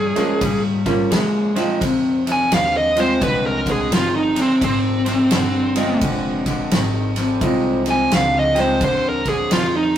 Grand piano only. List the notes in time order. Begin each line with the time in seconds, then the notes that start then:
0.15 F3 G#3 A#3 C#4 F4
0.86 F3 A#3 C#4 F4
1.55 F3 G#3 C4 D#4 F4
2.96 F3 G#3 C4 F4 D#5
5.76 F3 G#3 C4 F4 D#5
7.41 F3 G#3 C4 D#4 F4
8.55 F3 G#3 C4 D#4 G4